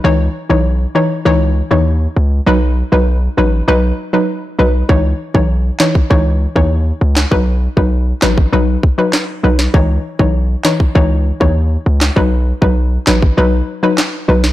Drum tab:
CP |----------------|----------------|------x--------x|------x-----x---|
SD |----------------|----------------|------o--------o|------o-----o--o|
BD |----------------|----------------|o--o---oo--o----|o--o---o--o-----|

CP |------x--------x|------x-----x---|
SD |------o--------o|------o-----o--o|
BD |o--o---oo--o----|o--o---o--------|